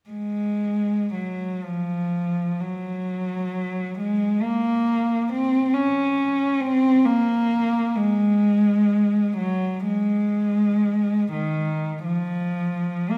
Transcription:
0.10 G#3
1.14 F#3
1.65 F3
2.61 F#3
3.99 G#3
4.42 A#3
5.33 C4
5.74 C#4
6.61 C4
7.06 A#3
7.95 G#3
9.37 F#3
9.87 G#3
11.33 D#3
12.05 F3
13.10 A#3

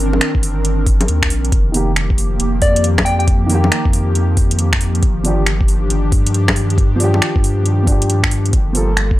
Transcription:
Already playing: G1 D#3 C4 D4 A#4
0.13 low bongo
0.21 finger snap, closed hi-hat
0.35 G1, kick
0.43 open hi-hat
0.65 closed hi-hat
0.86 kick, open hi-hat
1.01 closed hi-hat, low bongo
1.08 D#2, closed hi-hat
1.23 finger snap, kick
1.30 A#1, open hi-hat
1.45 closed hi-hat
1.52 F1 D#3 F3 A#3 G4, kick, closed hi-hat
1.72 D#3 A#3 G4, open hi-hat
1.96 finger snap, closed hi-hat
2.10 kick
2.18 open hi-hat
2.40 F1, closed hi-hat
2.62 F2 D5, kick, open hi-hat
2.76 closed hi-hat
2.84 closed hi-hat
2.98 finger snap, kick, low bongo
3.05 G5, open hi-hat
3.19 G5, closed hi-hat
3.28 kick, closed hi-hat
3.46 D#3 A#3, open hi-hat
3.54 G4
3.64 low bongo
3.72 finger snap, closed hi-hat
3.85 F2, kick
3.93 open hi-hat
4.15 closed hi-hat
4.37 kick, open hi-hat
4.51 closed hi-hat
4.59 closed hi-hat
4.73 finger snap, kick
4.81 open hi-hat
4.95 closed hi-hat
5.02 G1 D4 G4, kick, closed hi-hat
5.23 F3 D4 G4, open hi-hat
5.46 finger snap, closed hi-hat
5.61 kick
5.68 open hi-hat
5.90 G1, closed hi-hat
6.12 G2, kick, open hi-hat
6.26 closed hi-hat
6.34 closed hi-hat
6.48 finger snap, kick, low bongo
6.56 open hi-hat
6.70 closed hi-hat
6.78 kick, closed hi-hat
6.96 F3 D4
7.00 G4, open hi-hat
7.14 low bongo
7.22 finger snap, closed hi-hat
7.36 G2, kick
7.44 open hi-hat
7.66 closed hi-hat
7.83 F3 D4, kick, open hi-hat
7.91 G4
8.02 closed hi-hat
8.10 closed hi-hat
8.23 finger snap, kick
8.31 open hi-hat
8.46 closed hi-hat
8.52 G1 G3 A#3 F4 A4, kick, closed hi-hat
8.73 F3 A#3 A4, open hi-hat
8.97 finger snap, closed hi-hat
9.11 kick

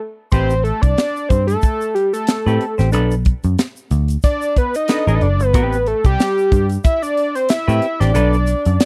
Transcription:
0.32 A1 C4 G4 B4 C5, kick, closed hi-hat, shaker
0.50 closed hi-hat, shaker
0.64 A4, closed hi-hat
0.82 C2 D5, kick, closed hi-hat, shaker
0.98 snare, closed hi-hat, shaker
1.16 shaker
1.29 G2 C5, kick, closed hi-hat, shaker
1.47 A4, closed hi-hat, shaker
1.62 kick, closed hi-hat, shaker
1.81 shaker
1.95 G4, closed hi-hat
2.13 A4, closed hi-hat, shaker
2.27 snare, closed hi-hat, shaker
2.46 A2 C4 G4 B4, shaker
2.61 closed hi-hat
2.78 A1 C4 G4 C5, snare, closed hi-hat, shaker
2.92 B1 D4 A4 B4, closed hi-hat, shaker
3.11 closed hi-hat, shaker
3.25 kick, closed hi-hat
3.44 F#2, closed hi-hat, shaker
3.59 snare, closed hi-hat, shaker
3.76 shaker
3.91 D2, closed hi-hat, shaker
4.08 closed hi-hat, shaker
4.23 D5, kick, closed hi-hat, shaker
4.42 shaker
4.56 B4, kick, closed hi-hat
4.75 D#5, closed hi-hat, shaker
4.88 D4 A4 B4, snare, closed hi-hat, shaker
5.07 A1 D4 A4 B4, shaker
5.21 F#1 D5, closed hi-hat
5.40 G1 B4, closed hi-hat, shaker
5.53 A1 C4 G4 B4, kick, closed hi-hat, shaker
5.73 closed hi-hat, shaker
5.87 A4, closed hi-hat
6.05 C2 G4, kick, closed hi-hat, shaker
6.20 snare, closed hi-hat, shaker
6.38 closed hi-hat, shaker
6.52 G2, kick, closed hi-hat, shaker
6.70 closed hi-hat, shaker
6.84 E5, kick, closed hi-hat, shaker
7.02 D5, closed hi-hat, shaker
7.17 closed hi-hat
7.35 C5, closed hi-hat, shaker
7.49 E5, snare, closed hi-hat, shaker
7.68 A2 C4 G4 B4, shaker
7.82 closed hi-hat
8.00 A1 C4 G4 C5 D5, snare, closed hi-hat, shaker
8.14 B1 D4 A4 B4, closed hi-hat, shaker
8.33 shaker
8.47 closed hi-hat, shaker
8.65 F#2, closed hi-hat, shaker
8.80 snare, closed hi-hat, shaker

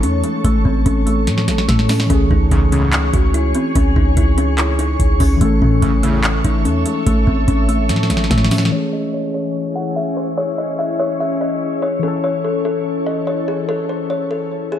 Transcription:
Already playing: E3 C#4 A4 C#5 C#6
0.03 E2 C#4, closed hi-hat
0.24 G#3, closed hi-hat
0.44 A1 A3, kick, closed hi-hat
0.65 A1 C4, kick
0.86 A1 C#4, kick, closed hi-hat
1.07 A3, closed hi-hat
1.27 A2, snare, closed hi-hat
1.38 snare
1.48 A1 G#3, snare, closed hi-hat
1.58 snare
1.69 A2 A3, kick, snare, closed hi-hat
1.79 snare
1.89 C#4, snare, open hi-hat
2.00 snare
2.06 E3 C#4
2.10 C#2 C#4 G#4 C#5, kick, closed hi-hat
2.14 G#4
2.31 C#2 D#4, kick
2.51 C#2 E2 G#2 C#3 C#4, kick, closed hi-hat
2.72 E2 G#2 C#3 C#4, closed hi-hat
2.93 clap, closed hi-hat
3.13 C#2 F#4, kick, closed hi-hat
3.34 E4, closed hi-hat
3.55 C4, closed hi-hat
3.75 C#2 C#4, kick, closed hi-hat
3.96 C#2 D#4, kick
4.17 C#2 E4, kick, closed hi-hat
4.38 C#4, closed hi-hat
4.58 E4, clap, closed hi-hat
4.79 D#4, closed hi-hat
5.00 C#2, kick, closed hi-hat
5.20 C#2 C#4, kick, open hi-hat
5.36 E3
5.41 A1 A3 C#4 A4 C#5 E5, kick, closed hi-hat
5.45 A4
5.62 A2 C#4, kick
5.82 A1 E2 A2 C#3 A3, kick, closed hi-hat
6.03 E2 A2 C#3 A3, closed hi-hat
6.24 clap, closed hi-hat
6.44 A1 D#4, kick, closed hi-hat
6.65 E2 C#4, closed hi-hat
6.86 G#3, closed hi-hat
7.06 A1 A3, kick, closed hi-hat
7.27 A1 C4, kick
7.48 A1 C#4, kick, closed hi-hat
7.69 A3, closed hi-hat
7.89 A2, snare, closed hi-hat
7.96 snare
8.03 snare
8.10 A1 G#3, snare, closed hi-hat
8.17 snare
8.24 snare
8.31 A2 A3, kick, snare, closed hi-hat
8.38 snare
8.45 snare
8.51 C#4, snare, open hi-hat
8.58 snare
8.65 E3, snare
8.72 C#4 E4 G#4 C#5
8.76 G#4
8.93 D#5
9.14 C#5
9.34 C#5
9.76 F#5
9.96 E5
10.17 C5
10.38 C#5
10.58 D#5
10.79 E5
11.00 C#5
11.20 E5
11.41 D#5
11.82 C#5
11.99 E3 A4
12.03 C#4
12.08 A4
12.24 C#5
12.44 A4
12.65 A4
13.06 D#5
13.27 C#5
13.48 G#4
13.69 A4
13.89 C5
14.10 C#5
14.31 A4
14.72 G#4

